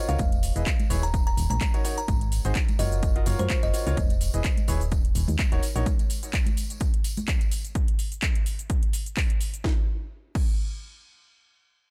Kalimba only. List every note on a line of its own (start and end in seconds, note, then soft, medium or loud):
0.09 0.22 F5 medium
1.03 1.17 A#5 medium
1.27 1.40 A#5 medium
1.50 1.95 A#5 medium
1.98 2.14 A#5 medium
2.79 2.95 D#5 medium
3.39 3.53 C5 loud
3.63 3.77 D#5 loud